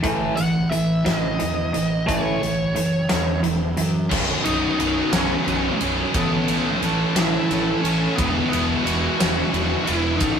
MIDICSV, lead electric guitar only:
0, 0, Header, 1, 2, 480
1, 0, Start_track
1, 0, Tempo, 677966
1, 26, Time_signature, 6, 3, 24, 8
1, 7360, End_track
2, 0, Start_track
2, 0, Title_t, "Lead electric guitar"
2, 0, Program_c, 0, 29
2, 257, Note_on_c, 0, 78, 96
2, 494, Note_off_c, 0, 78, 0
2, 497, Note_on_c, 0, 76, 89
2, 748, Note_off_c, 0, 76, 0
2, 751, Note_on_c, 0, 75, 97
2, 1446, Note_off_c, 0, 75, 0
2, 1476, Note_on_c, 0, 73, 87
2, 2409, Note_off_c, 0, 73, 0
2, 3147, Note_on_c, 0, 63, 113
2, 3629, Note_off_c, 0, 63, 0
2, 3631, Note_on_c, 0, 61, 102
2, 4085, Note_off_c, 0, 61, 0
2, 4357, Note_on_c, 0, 59, 112
2, 4807, Note_off_c, 0, 59, 0
2, 5066, Note_on_c, 0, 64, 97
2, 5532, Note_off_c, 0, 64, 0
2, 5535, Note_on_c, 0, 61, 85
2, 5774, Note_on_c, 0, 59, 103
2, 5790, Note_off_c, 0, 61, 0
2, 6004, Note_off_c, 0, 59, 0
2, 6014, Note_on_c, 0, 59, 94
2, 6253, Note_on_c, 0, 66, 105
2, 6268, Note_off_c, 0, 59, 0
2, 6964, Note_on_c, 0, 64, 92
2, 6999, Note_off_c, 0, 66, 0
2, 7194, Note_off_c, 0, 64, 0
2, 7196, Note_on_c, 0, 63, 100
2, 7360, Note_off_c, 0, 63, 0
2, 7360, End_track
0, 0, End_of_file